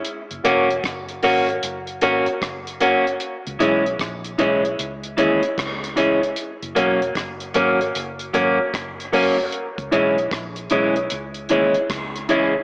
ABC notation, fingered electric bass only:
X:1
M:4/4
L:1/16
Q:"Swing 16ths" 1/4=76
K:C#dor
V:1 name="Fingered electric bass" clef=bass
z F,,, E,,,2 F,,,2 G,,,2 F,,,2 G,,, z F,,,4 | z C,, B,,,2 A,,,2 B,,,2 C,,2 D,, z C,,4 | z F,,, E,,,2 F,,,2 G,,,2 F,,,2 G,,, z F,,,4 | z C,, B,,,2 A,,,2 B,,,2 C,,2 D,, z C,,4 |]